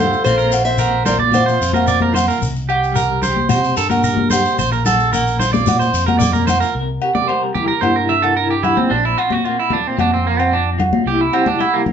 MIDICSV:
0, 0, Header, 1, 9, 480
1, 0, Start_track
1, 0, Tempo, 540541
1, 225, Time_signature, 4, 2, 24, 8
1, 10591, End_track
2, 0, Start_track
2, 0, Title_t, "Steel-string acoustic guitar"
2, 0, Program_c, 0, 25
2, 0, Note_on_c, 0, 69, 79
2, 200, Note_off_c, 0, 69, 0
2, 216, Note_on_c, 0, 72, 95
2, 572, Note_off_c, 0, 72, 0
2, 576, Note_on_c, 0, 76, 92
2, 940, Note_off_c, 0, 76, 0
2, 943, Note_on_c, 0, 74, 82
2, 1008, Note_off_c, 0, 74, 0
2, 1195, Note_on_c, 0, 72, 79
2, 1874, Note_off_c, 0, 72, 0
2, 10591, End_track
3, 0, Start_track
3, 0, Title_t, "Clean electric guitar"
3, 0, Program_c, 1, 27
3, 0, Note_on_c, 1, 72, 88
3, 205, Note_off_c, 1, 72, 0
3, 219, Note_on_c, 1, 72, 86
3, 330, Note_off_c, 1, 72, 0
3, 334, Note_on_c, 1, 70, 69
3, 452, Note_off_c, 1, 70, 0
3, 701, Note_on_c, 1, 70, 71
3, 930, Note_off_c, 1, 70, 0
3, 938, Note_on_c, 1, 72, 75
3, 1057, Note_off_c, 1, 72, 0
3, 1061, Note_on_c, 1, 74, 80
3, 1292, Note_off_c, 1, 74, 0
3, 1297, Note_on_c, 1, 72, 59
3, 1529, Note_off_c, 1, 72, 0
3, 1547, Note_on_c, 1, 70, 69
3, 1658, Note_off_c, 1, 70, 0
3, 1668, Note_on_c, 1, 74, 72
3, 1782, Note_off_c, 1, 74, 0
3, 1794, Note_on_c, 1, 70, 70
3, 1900, Note_off_c, 1, 70, 0
3, 1904, Note_on_c, 1, 72, 75
3, 2020, Note_off_c, 1, 72, 0
3, 2025, Note_on_c, 1, 70, 68
3, 2138, Note_off_c, 1, 70, 0
3, 2386, Note_on_c, 1, 67, 74
3, 2613, Note_off_c, 1, 67, 0
3, 2625, Note_on_c, 1, 70, 75
3, 2853, Note_off_c, 1, 70, 0
3, 2867, Note_on_c, 1, 72, 71
3, 3094, Note_off_c, 1, 72, 0
3, 3109, Note_on_c, 1, 72, 84
3, 3335, Note_off_c, 1, 72, 0
3, 3349, Note_on_c, 1, 69, 74
3, 3457, Note_off_c, 1, 69, 0
3, 3461, Note_on_c, 1, 70, 66
3, 3576, Note_off_c, 1, 70, 0
3, 3587, Note_on_c, 1, 70, 76
3, 3814, Note_off_c, 1, 70, 0
3, 3823, Note_on_c, 1, 72, 83
3, 4052, Note_off_c, 1, 72, 0
3, 4076, Note_on_c, 1, 72, 88
3, 4187, Note_off_c, 1, 72, 0
3, 4194, Note_on_c, 1, 70, 72
3, 4303, Note_off_c, 1, 70, 0
3, 4315, Note_on_c, 1, 69, 71
3, 4539, Note_off_c, 1, 69, 0
3, 4553, Note_on_c, 1, 70, 69
3, 4778, Note_off_c, 1, 70, 0
3, 4791, Note_on_c, 1, 72, 75
3, 4905, Note_off_c, 1, 72, 0
3, 4910, Note_on_c, 1, 74, 75
3, 5137, Note_off_c, 1, 74, 0
3, 5146, Note_on_c, 1, 72, 65
3, 5375, Note_off_c, 1, 72, 0
3, 5385, Note_on_c, 1, 70, 68
3, 5490, Note_off_c, 1, 70, 0
3, 5494, Note_on_c, 1, 74, 81
3, 5616, Note_off_c, 1, 74, 0
3, 5623, Note_on_c, 1, 70, 73
3, 5738, Note_off_c, 1, 70, 0
3, 5746, Note_on_c, 1, 72, 88
3, 5860, Note_off_c, 1, 72, 0
3, 5864, Note_on_c, 1, 70, 78
3, 5978, Note_off_c, 1, 70, 0
3, 6348, Note_on_c, 1, 74, 82
3, 6462, Note_off_c, 1, 74, 0
3, 6462, Note_on_c, 1, 72, 75
3, 6583, Note_off_c, 1, 72, 0
3, 6700, Note_on_c, 1, 67, 85
3, 6813, Note_off_c, 1, 67, 0
3, 6816, Note_on_c, 1, 70, 81
3, 6935, Note_on_c, 1, 72, 85
3, 6937, Note_off_c, 1, 70, 0
3, 7059, Note_off_c, 1, 72, 0
3, 7067, Note_on_c, 1, 70, 64
3, 7182, Note_off_c, 1, 70, 0
3, 7184, Note_on_c, 1, 76, 91
3, 7302, Note_on_c, 1, 69, 67
3, 7304, Note_off_c, 1, 76, 0
3, 7420, Note_off_c, 1, 69, 0
3, 7428, Note_on_c, 1, 70, 88
3, 7546, Note_off_c, 1, 70, 0
3, 7552, Note_on_c, 1, 67, 75
3, 7665, Note_off_c, 1, 67, 0
3, 7665, Note_on_c, 1, 64, 86
3, 7784, Note_off_c, 1, 64, 0
3, 7785, Note_on_c, 1, 60, 73
3, 7901, Note_off_c, 1, 60, 0
3, 7909, Note_on_c, 1, 62, 76
3, 8026, Note_off_c, 1, 62, 0
3, 8036, Note_on_c, 1, 64, 70
3, 8149, Note_off_c, 1, 64, 0
3, 8149, Note_on_c, 1, 65, 80
3, 8278, Note_off_c, 1, 65, 0
3, 8278, Note_on_c, 1, 66, 85
3, 8395, Note_off_c, 1, 66, 0
3, 8395, Note_on_c, 1, 65, 72
3, 8509, Note_off_c, 1, 65, 0
3, 8520, Note_on_c, 1, 64, 62
3, 8628, Note_off_c, 1, 64, 0
3, 8641, Note_on_c, 1, 62, 74
3, 8767, Note_off_c, 1, 62, 0
3, 8767, Note_on_c, 1, 60, 73
3, 8872, Note_off_c, 1, 60, 0
3, 8883, Note_on_c, 1, 62, 85
3, 8993, Note_off_c, 1, 62, 0
3, 9001, Note_on_c, 1, 60, 66
3, 9108, Note_off_c, 1, 60, 0
3, 9118, Note_on_c, 1, 58, 72
3, 9230, Note_off_c, 1, 58, 0
3, 9230, Note_on_c, 1, 60, 69
3, 9343, Note_off_c, 1, 60, 0
3, 9352, Note_on_c, 1, 62, 76
3, 9493, Note_off_c, 1, 62, 0
3, 9833, Note_on_c, 1, 67, 85
3, 9953, Note_off_c, 1, 67, 0
3, 9953, Note_on_c, 1, 64, 87
3, 10064, Note_off_c, 1, 64, 0
3, 10065, Note_on_c, 1, 60, 81
3, 10182, Note_off_c, 1, 60, 0
3, 10186, Note_on_c, 1, 62, 82
3, 10300, Note_off_c, 1, 62, 0
3, 10305, Note_on_c, 1, 64, 88
3, 10422, Note_off_c, 1, 64, 0
3, 10422, Note_on_c, 1, 58, 72
3, 10493, Note_off_c, 1, 58, 0
3, 10591, End_track
4, 0, Start_track
4, 0, Title_t, "Trumpet"
4, 0, Program_c, 2, 56
4, 0, Note_on_c, 2, 65, 60
4, 210, Note_off_c, 2, 65, 0
4, 224, Note_on_c, 2, 65, 85
4, 561, Note_off_c, 2, 65, 0
4, 580, Note_on_c, 2, 72, 81
4, 915, Note_off_c, 2, 72, 0
4, 940, Note_on_c, 2, 70, 79
4, 1049, Note_off_c, 2, 70, 0
4, 1191, Note_on_c, 2, 65, 69
4, 1872, Note_off_c, 2, 65, 0
4, 10591, End_track
5, 0, Start_track
5, 0, Title_t, "Clean electric guitar"
5, 0, Program_c, 3, 27
5, 0, Note_on_c, 3, 48, 70
5, 0, Note_on_c, 3, 55, 67
5, 0, Note_on_c, 3, 67, 58
5, 0, Note_on_c, 3, 70, 65
5, 193, Note_off_c, 3, 67, 0
5, 196, Note_off_c, 3, 48, 0
5, 219, Note_on_c, 3, 46, 74
5, 226, Note_off_c, 3, 55, 0
5, 231, Note_on_c, 3, 58, 65
5, 234, Note_on_c, 3, 60, 52
5, 239, Note_on_c, 3, 65, 65
5, 257, Note_off_c, 3, 70, 0
5, 686, Note_off_c, 3, 58, 0
5, 690, Note_on_c, 3, 58, 59
5, 930, Note_off_c, 3, 65, 0
5, 941, Note_on_c, 3, 65, 60
5, 1177, Note_on_c, 3, 53, 75
5, 1414, Note_off_c, 3, 65, 0
5, 1425, Note_on_c, 3, 65, 61
5, 1643, Note_off_c, 3, 58, 0
5, 1646, Note_on_c, 3, 58, 65
5, 1874, Note_off_c, 3, 65, 0
5, 1884, Note_on_c, 3, 65, 59
5, 2106, Note_off_c, 3, 65, 0
5, 2110, Note_off_c, 3, 46, 0
5, 2112, Note_off_c, 3, 53, 0
5, 2113, Note_on_c, 3, 48, 79
5, 2140, Note_off_c, 3, 58, 0
5, 2594, Note_on_c, 3, 55, 61
5, 2853, Note_on_c, 3, 67, 58
5, 3086, Note_off_c, 3, 48, 0
5, 3096, Note_on_c, 3, 48, 72
5, 3343, Note_on_c, 3, 70, 66
5, 3567, Note_off_c, 3, 55, 0
5, 3578, Note_on_c, 3, 55, 75
5, 3820, Note_off_c, 3, 67, 0
5, 3829, Note_on_c, 3, 67, 60
5, 4033, Note_off_c, 3, 48, 0
5, 4039, Note_off_c, 3, 67, 0
5, 4062, Note_off_c, 3, 55, 0
5, 4069, Note_off_c, 3, 60, 0
5, 4072, Note_on_c, 3, 46, 79
5, 4556, Note_on_c, 3, 58, 68
5, 4790, Note_on_c, 3, 65, 60
5, 5258, Note_off_c, 3, 70, 0
5, 5261, Note_on_c, 3, 72, 70
5, 5497, Note_off_c, 3, 58, 0
5, 5508, Note_on_c, 3, 58, 65
5, 5737, Note_off_c, 3, 65, 0
5, 5748, Note_on_c, 3, 65, 59
5, 5956, Note_off_c, 3, 72, 0
5, 5959, Note_off_c, 3, 58, 0
5, 5959, Note_off_c, 3, 65, 0
5, 5962, Note_off_c, 3, 46, 0
5, 5975, Note_on_c, 3, 48, 79
5, 5984, Note_on_c, 3, 70, 69
5, 6234, Note_on_c, 3, 67, 60
5, 6478, Note_on_c, 3, 55, 58
5, 6480, Note_off_c, 3, 70, 0
5, 6484, Note_on_c, 3, 70, 61
5, 6713, Note_on_c, 3, 64, 61
5, 6930, Note_off_c, 3, 64, 0
5, 6941, Note_on_c, 3, 64, 64
5, 7174, Note_off_c, 3, 48, 0
5, 7184, Note_on_c, 3, 48, 69
5, 7185, Note_off_c, 3, 70, 0
5, 7189, Note_on_c, 3, 70, 56
5, 7421, Note_off_c, 3, 64, 0
5, 7432, Note_on_c, 3, 64, 64
5, 7657, Note_off_c, 3, 55, 0
5, 7668, Note_on_c, 3, 55, 60
5, 7877, Note_off_c, 3, 48, 0
5, 7881, Note_off_c, 3, 64, 0
5, 7882, Note_off_c, 3, 67, 0
5, 7890, Note_on_c, 3, 46, 76
5, 7899, Note_off_c, 3, 70, 0
5, 7902, Note_on_c, 3, 72, 72
5, 7907, Note_off_c, 3, 55, 0
5, 8145, Note_on_c, 3, 60, 66
5, 8384, Note_on_c, 3, 58, 67
5, 8392, Note_off_c, 3, 60, 0
5, 8396, Note_on_c, 3, 60, 54
5, 8615, Note_on_c, 3, 65, 59
5, 8849, Note_off_c, 3, 60, 0
5, 8852, Note_on_c, 3, 60, 64
5, 9084, Note_on_c, 3, 53, 72
5, 9086, Note_off_c, 3, 72, 0
5, 9090, Note_on_c, 3, 72, 72
5, 9333, Note_off_c, 3, 60, 0
5, 9337, Note_on_c, 3, 60, 63
5, 9563, Note_off_c, 3, 65, 0
5, 9574, Note_on_c, 3, 65, 65
5, 9785, Note_off_c, 3, 53, 0
5, 9787, Note_off_c, 3, 46, 0
5, 9790, Note_off_c, 3, 65, 0
5, 9807, Note_on_c, 3, 48, 78
5, 9811, Note_off_c, 3, 58, 0
5, 9814, Note_on_c, 3, 55, 55
5, 9821, Note_off_c, 3, 60, 0
5, 9824, Note_on_c, 3, 64, 72
5, 10060, Note_on_c, 3, 67, 67
5, 10281, Note_off_c, 3, 55, 0
5, 10292, Note_on_c, 3, 55, 63
5, 10528, Note_off_c, 3, 67, 0
5, 10539, Note_on_c, 3, 67, 60
5, 10591, Note_off_c, 3, 48, 0
5, 10591, Note_off_c, 3, 55, 0
5, 10591, Note_off_c, 3, 64, 0
5, 10591, Note_off_c, 3, 67, 0
5, 10591, Note_off_c, 3, 72, 0
5, 10591, End_track
6, 0, Start_track
6, 0, Title_t, "Fingered electric bass"
6, 0, Program_c, 4, 33
6, 0, Note_on_c, 4, 43, 91
6, 121, Note_off_c, 4, 43, 0
6, 234, Note_on_c, 4, 34, 82
6, 1190, Note_on_c, 4, 46, 88
6, 1203, Note_off_c, 4, 34, 0
6, 1393, Note_off_c, 4, 46, 0
6, 1427, Note_on_c, 4, 41, 97
6, 2043, Note_off_c, 4, 41, 0
6, 2145, Note_on_c, 4, 36, 93
6, 3106, Note_on_c, 4, 48, 86
6, 3119, Note_off_c, 4, 36, 0
6, 3311, Note_off_c, 4, 48, 0
6, 3349, Note_on_c, 4, 43, 92
6, 3964, Note_off_c, 4, 43, 0
6, 4076, Note_on_c, 4, 34, 84
6, 5029, Note_on_c, 4, 46, 95
6, 5043, Note_off_c, 4, 34, 0
6, 5234, Note_off_c, 4, 46, 0
6, 5267, Note_on_c, 4, 41, 100
6, 5884, Note_off_c, 4, 41, 0
6, 5993, Note_on_c, 4, 36, 80
6, 6196, Note_off_c, 4, 36, 0
6, 6943, Note_on_c, 4, 43, 88
6, 7766, Note_off_c, 4, 43, 0
6, 7912, Note_on_c, 4, 34, 87
6, 8115, Note_off_c, 4, 34, 0
6, 8867, Note_on_c, 4, 41, 88
6, 9687, Note_off_c, 4, 41, 0
6, 9820, Note_on_c, 4, 36, 86
6, 10027, Note_off_c, 4, 36, 0
6, 10591, End_track
7, 0, Start_track
7, 0, Title_t, "Muted clean electric guitar strokes"
7, 5015, Note_on_c, 9, 29, 73
7, 5103, Note_off_c, 9, 29, 0
7, 10591, End_track
8, 0, Start_track
8, 0, Title_t, "Shekere"
8, 115, Note_on_c, 9, 82, 25
8, 204, Note_off_c, 9, 82, 0
8, 226, Note_on_c, 9, 82, 85
8, 315, Note_off_c, 9, 82, 0
8, 342, Note_on_c, 9, 82, 25
8, 430, Note_off_c, 9, 82, 0
8, 461, Note_on_c, 9, 82, 76
8, 549, Note_off_c, 9, 82, 0
8, 582, Note_on_c, 9, 82, 28
8, 671, Note_off_c, 9, 82, 0
8, 691, Note_on_c, 9, 82, 86
8, 780, Note_off_c, 9, 82, 0
8, 943, Note_on_c, 9, 82, 67
8, 1031, Note_off_c, 9, 82, 0
8, 1186, Note_on_c, 9, 82, 77
8, 1275, Note_off_c, 9, 82, 0
8, 1317, Note_on_c, 9, 82, 25
8, 1406, Note_off_c, 9, 82, 0
8, 1437, Note_on_c, 9, 82, 62
8, 1526, Note_off_c, 9, 82, 0
8, 1557, Note_on_c, 9, 82, 27
8, 1645, Note_off_c, 9, 82, 0
8, 1664, Note_on_c, 9, 82, 78
8, 1752, Note_off_c, 9, 82, 0
8, 1918, Note_on_c, 9, 82, 74
8, 2006, Note_off_c, 9, 82, 0
8, 2040, Note_on_c, 9, 82, 28
8, 2128, Note_off_c, 9, 82, 0
8, 2148, Note_on_c, 9, 82, 87
8, 2237, Note_off_c, 9, 82, 0
8, 2270, Note_on_c, 9, 82, 27
8, 2359, Note_off_c, 9, 82, 0
8, 2519, Note_on_c, 9, 82, 29
8, 2608, Note_off_c, 9, 82, 0
8, 2626, Note_on_c, 9, 82, 83
8, 2715, Note_off_c, 9, 82, 0
8, 2869, Note_on_c, 9, 82, 71
8, 2958, Note_off_c, 9, 82, 0
8, 3105, Note_on_c, 9, 82, 93
8, 3194, Note_off_c, 9, 82, 0
8, 3232, Note_on_c, 9, 82, 30
8, 3321, Note_off_c, 9, 82, 0
8, 3345, Note_on_c, 9, 82, 67
8, 3434, Note_off_c, 9, 82, 0
8, 3469, Note_on_c, 9, 82, 27
8, 3558, Note_off_c, 9, 82, 0
8, 3583, Note_on_c, 9, 82, 90
8, 3672, Note_off_c, 9, 82, 0
8, 3824, Note_on_c, 9, 82, 86
8, 3913, Note_off_c, 9, 82, 0
8, 3951, Note_on_c, 9, 82, 29
8, 4040, Note_off_c, 9, 82, 0
8, 4071, Note_on_c, 9, 82, 96
8, 4160, Note_off_c, 9, 82, 0
8, 4196, Note_on_c, 9, 82, 28
8, 4285, Note_off_c, 9, 82, 0
8, 4313, Note_on_c, 9, 82, 77
8, 4402, Note_off_c, 9, 82, 0
8, 4439, Note_on_c, 9, 82, 31
8, 4527, Note_off_c, 9, 82, 0
8, 4558, Note_on_c, 9, 82, 98
8, 4647, Note_off_c, 9, 82, 0
8, 4680, Note_on_c, 9, 82, 28
8, 4769, Note_off_c, 9, 82, 0
8, 4805, Note_on_c, 9, 82, 79
8, 4893, Note_off_c, 9, 82, 0
8, 4918, Note_on_c, 9, 82, 27
8, 5007, Note_off_c, 9, 82, 0
8, 5030, Note_on_c, 9, 82, 91
8, 5119, Note_off_c, 9, 82, 0
8, 5158, Note_on_c, 9, 82, 29
8, 5247, Note_off_c, 9, 82, 0
8, 5276, Note_on_c, 9, 82, 66
8, 5364, Note_off_c, 9, 82, 0
8, 5507, Note_on_c, 9, 82, 92
8, 5595, Note_off_c, 9, 82, 0
8, 5633, Note_on_c, 9, 82, 29
8, 5721, Note_off_c, 9, 82, 0
8, 5754, Note_on_c, 9, 82, 66
8, 5843, Note_off_c, 9, 82, 0
8, 5876, Note_on_c, 9, 82, 29
8, 5964, Note_off_c, 9, 82, 0
8, 10591, End_track
9, 0, Start_track
9, 0, Title_t, "Drums"
9, 471, Note_on_c, 9, 68, 68
9, 560, Note_off_c, 9, 68, 0
9, 711, Note_on_c, 9, 68, 60
9, 799, Note_off_c, 9, 68, 0
9, 939, Note_on_c, 9, 64, 63
9, 1028, Note_off_c, 9, 64, 0
9, 1055, Note_on_c, 9, 63, 60
9, 1143, Note_off_c, 9, 63, 0
9, 1170, Note_on_c, 9, 63, 59
9, 1189, Note_on_c, 9, 68, 69
9, 1259, Note_off_c, 9, 63, 0
9, 1278, Note_off_c, 9, 68, 0
9, 1540, Note_on_c, 9, 63, 61
9, 1559, Note_on_c, 9, 68, 65
9, 1628, Note_off_c, 9, 63, 0
9, 1648, Note_off_c, 9, 68, 0
9, 1781, Note_on_c, 9, 63, 66
9, 1870, Note_off_c, 9, 63, 0
9, 1898, Note_on_c, 9, 64, 61
9, 1916, Note_on_c, 9, 68, 65
9, 1986, Note_off_c, 9, 64, 0
9, 2005, Note_off_c, 9, 68, 0
9, 2395, Note_on_c, 9, 68, 74
9, 2484, Note_off_c, 9, 68, 0
9, 2625, Note_on_c, 9, 68, 53
9, 2714, Note_off_c, 9, 68, 0
9, 2862, Note_on_c, 9, 64, 63
9, 2951, Note_off_c, 9, 64, 0
9, 2982, Note_on_c, 9, 63, 57
9, 3071, Note_off_c, 9, 63, 0
9, 3100, Note_on_c, 9, 63, 58
9, 3102, Note_on_c, 9, 68, 74
9, 3189, Note_off_c, 9, 63, 0
9, 3190, Note_off_c, 9, 68, 0
9, 3462, Note_on_c, 9, 63, 68
9, 3473, Note_on_c, 9, 68, 63
9, 3551, Note_off_c, 9, 63, 0
9, 3562, Note_off_c, 9, 68, 0
9, 3700, Note_on_c, 9, 63, 75
9, 3789, Note_off_c, 9, 63, 0
9, 3815, Note_on_c, 9, 64, 69
9, 3842, Note_on_c, 9, 68, 70
9, 3904, Note_off_c, 9, 64, 0
9, 3931, Note_off_c, 9, 68, 0
9, 4311, Note_on_c, 9, 64, 71
9, 4319, Note_on_c, 9, 68, 64
9, 4400, Note_off_c, 9, 64, 0
9, 4408, Note_off_c, 9, 68, 0
9, 4569, Note_on_c, 9, 68, 61
9, 4658, Note_off_c, 9, 68, 0
9, 4790, Note_on_c, 9, 64, 58
9, 4879, Note_off_c, 9, 64, 0
9, 4919, Note_on_c, 9, 63, 67
9, 5008, Note_off_c, 9, 63, 0
9, 5037, Note_on_c, 9, 63, 70
9, 5046, Note_on_c, 9, 68, 73
9, 5125, Note_off_c, 9, 63, 0
9, 5134, Note_off_c, 9, 68, 0
9, 5400, Note_on_c, 9, 63, 75
9, 5402, Note_on_c, 9, 68, 64
9, 5489, Note_off_c, 9, 63, 0
9, 5491, Note_off_c, 9, 68, 0
9, 5517, Note_on_c, 9, 64, 68
9, 5606, Note_off_c, 9, 64, 0
9, 5633, Note_on_c, 9, 63, 75
9, 5722, Note_off_c, 9, 63, 0
9, 5750, Note_on_c, 9, 64, 64
9, 5767, Note_on_c, 9, 68, 72
9, 5839, Note_off_c, 9, 64, 0
9, 5856, Note_off_c, 9, 68, 0
9, 6230, Note_on_c, 9, 68, 70
9, 6319, Note_off_c, 9, 68, 0
9, 6349, Note_on_c, 9, 63, 62
9, 6438, Note_off_c, 9, 63, 0
9, 6472, Note_on_c, 9, 68, 51
9, 6561, Note_off_c, 9, 68, 0
9, 6708, Note_on_c, 9, 63, 51
9, 6708, Note_on_c, 9, 64, 51
9, 6797, Note_off_c, 9, 63, 0
9, 6797, Note_off_c, 9, 64, 0
9, 6946, Note_on_c, 9, 63, 68
9, 6953, Note_on_c, 9, 68, 64
9, 7035, Note_off_c, 9, 63, 0
9, 7042, Note_off_c, 9, 68, 0
9, 7313, Note_on_c, 9, 68, 67
9, 7402, Note_off_c, 9, 68, 0
9, 7668, Note_on_c, 9, 64, 61
9, 7676, Note_on_c, 9, 68, 66
9, 7757, Note_off_c, 9, 64, 0
9, 7765, Note_off_c, 9, 68, 0
9, 7791, Note_on_c, 9, 63, 69
9, 7880, Note_off_c, 9, 63, 0
9, 8155, Note_on_c, 9, 68, 67
9, 8243, Note_off_c, 9, 68, 0
9, 8263, Note_on_c, 9, 63, 64
9, 8352, Note_off_c, 9, 63, 0
9, 8396, Note_on_c, 9, 68, 52
9, 8484, Note_off_c, 9, 68, 0
9, 8617, Note_on_c, 9, 63, 54
9, 8617, Note_on_c, 9, 64, 49
9, 8706, Note_off_c, 9, 63, 0
9, 8706, Note_off_c, 9, 64, 0
9, 8867, Note_on_c, 9, 63, 67
9, 8874, Note_on_c, 9, 68, 71
9, 8956, Note_off_c, 9, 63, 0
9, 8963, Note_off_c, 9, 68, 0
9, 9232, Note_on_c, 9, 68, 69
9, 9321, Note_off_c, 9, 68, 0
9, 9585, Note_on_c, 9, 64, 69
9, 9589, Note_on_c, 9, 68, 66
9, 9674, Note_off_c, 9, 64, 0
9, 9678, Note_off_c, 9, 68, 0
9, 9704, Note_on_c, 9, 63, 74
9, 9793, Note_off_c, 9, 63, 0
9, 10064, Note_on_c, 9, 68, 74
9, 10152, Note_off_c, 9, 68, 0
9, 10179, Note_on_c, 9, 63, 68
9, 10268, Note_off_c, 9, 63, 0
9, 10305, Note_on_c, 9, 68, 61
9, 10393, Note_off_c, 9, 68, 0
9, 10534, Note_on_c, 9, 63, 49
9, 10534, Note_on_c, 9, 64, 65
9, 10591, Note_off_c, 9, 63, 0
9, 10591, Note_off_c, 9, 64, 0
9, 10591, End_track
0, 0, End_of_file